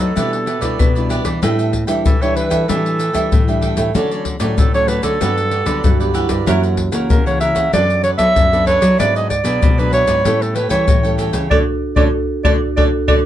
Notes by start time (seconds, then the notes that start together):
Already playing: F#2 F#3 A3 D#4 D#5
0.00 F#3 A4 B4
0.15 B2 G3 D4 E4 G4 B4 D5, pandeiro, shaker, surdo
0.32 muted cavaquinho stroke, pandeiro, shaker
0.46 E4 G4 B4 D5, pandeiro
0.61 B2 G3 D4 E4 G4 B4 D5, pandeiro, shaker, surdo
0.79 B2 B4, pandeiro, shaker, surdo
0.95 G3 D4 E4 G4 B4 D5, pandeiro, shaker
1.09 E4 G4 B4 D5, pandeiro, shaker
1.24 E3 G4 B4 D5, pandeiro, shaker, surdo
1.42 A2 G3 D4 E4 A4 E5 G5, pandeiro, shaker, surdo
1.58 A4 E5 G5, pandeiro, shaker
1.72 muted cavaquinho stroke, pandeiro, surdo
1.87 E3 G3 D4 E4 A4 E5 G5, pandeiro, shaker
2.06 E3 A4, pandeiro, shaker, surdo
2.21 G3 D4 E4 A4 C#5 E5 G5, pandeiro, shaker
2.35 D4 A4 B4 E5 G5, pandeiro
2.50 E3 A4 E5 G5, pandeiro, shaker, surdo
2.68 A2 E3 G3 D4 E4 A4 E5 G5, pandeiro, shaker, surdo
2.85 muted cavaquinho stroke, pandeiro, shaker
2.99 D4 A4 E5 G5, pandeiro, shaker
3.13 E3 G3 D4 E4 A4 E5 G5, pandeiro, shaker, surdo
3.31 A2 E3, pandeiro, shaker, surdo
3.48 G3 D4 E4 A4 E5 G5, pandeiro, shaker
3.62 D4 A4 E5 G5, pandeiro, surdo
3.77 A2 A4 E5 G5, pandeiro, shaker, surdo
3.94 D3 F#3 A3 C#4 F#4 A4 C#5 D5, pandeiro, shaker, surdo
4.11 A4 C#5 D5, pandeiro, shaker
4.25 muted cavaquinho stroke, pandeiro, surdo
4.40 A2 F#3 A3 C#4 A4 C#5 D5, pandeiro, shaker
4.58 A2 A4, pandeiro, shaker, surdo
4.74 F#3 A3 C#4 A4 C#5 D5, pandeiro, shaker
4.88 F#4 A4 B4 C#5 D5, pandeiro
5.03 D3 A4 C#5 D5, pandeiro, shaker, surdo
5.21 G2 F#3 B3 D4 F#4 G4 B4 D5, pandeiro, shaker, surdo
5.38 muted cavaquinho stroke, pandeiro, shaker
5.51 F#4 G4 B4 D5, pandeiro
5.66 D3 F#3 B3 D4 G4 B4 D5, pandeiro, shaker, surdo
5.84 G2 D3 F#4, pandeiro, shaker, surdo
6.00 F#3 B3 D4 G4 B4 D5, pandeiro, shaker
6.14 E4 F#4 G4 B4 D5, pandeiro, shaker
6.29 G2 G4 B4 D5, pandeiro, shaker, surdo
6.46 F#2 E3 A#3 C#4 E4 F#4 A#4 C#5 F#5, pandeiro, shaker, surdo
6.63 A#4 C#5 F#5, pandeiro, shaker
6.77 muted cavaquinho stroke, pandeiro, surdo
6.92 C#3 E3 A#3 C#4 A#4 C#5 F#5, pandeiro, shaker
7.10 C#3 A#4, pandeiro, shaker, surdo
7.26 E3 A#3 C#4 A#4 C#5 F#5, pandeiro, shaker
7.40 E4 A#4 C#5 E5 F#5, pandeiro, shaker
7.55 C#3 A#4 C#5 F#5, pandeiro, shaker, surdo
7.73 F#2 F#3 B3 D4 A4 B4 D5, pandeiro, shaker, surdo
7.90 muted cavaquinho stroke, pandeiro, shaker
8.03 D4 A4 B4 C#5 D5, pandeiro, shaker
8.18 F#3 B3 D4 A4 B4 D5 E5, pandeiro, shaker, surdo
8.36 F#2 F#3, pandeiro, shaker, surdo
8.52 B3 D4 A4 B4 D5, pandeiro, shaker
8.66 D4 A4 B4 C#5 D5, pandeiro, surdo
8.81 F#3 A4 B4 D5, pandeiro, shaker, surdo
8.98 G#2 F#3 B3 D4 E4 G#4 B4 D5, pandeiro, shaker, surdo
9.15 G#4 B4 D5 D#5, pandeiro, shaker
9.29 D5, muted cavaquinho stroke, pandeiro, surdo
9.44 B2 F#3 B3 D4 G#4 B4 D5, pandeiro, shaker
9.62 G#2 B2, pandeiro, shaker, surdo
9.78 F#3 B3 D4 G#4 B4 D5, pandeiro, shaker
9.92 E4 G#4 B4 C#5 D5, pandeiro
10.07 G#2 G#4 B4 D5, pandeiro, shaker, surdo
10.24 A2 G3 C#4 E4 G4 A4 C#5 G5, pandeiro, shaker, surdo
10.41 A4, muted cavaquinho stroke, pandeiro, shaker
10.55 G4 A4 B4 C#5 G5, pandeiro
10.69 E3 G3 C#4 E4 A4 C#5 G5, pandeiro, shaker, surdo
10.88 A2 E3, pandeiro, shaker, surdo
11.03 G3 C#4 E4 A4 C#5 G5, pandeiro, shaker
11.18 G4 A4 C#5 G5, pandeiro, shaker, surdo
11.33 C#3 A4 C#5 G5, pandeiro, shaker, surdo
11.51 D3 A3 C#4 D4 F#4 A4 C#5 D5, surdo
11.96 D3 A3 C#4 D4 F#4 A4 C#5 D5, surdo
12.44 D3 A3 C#4 D4 F#4 A4 C#5 D5, surdo
12.77 D3 A3 C#4 D4 F#4 A4 C#5 D5, surdo
13.07 D3 A3 C#4 D4 F#4 A4 C#5 D5, surdo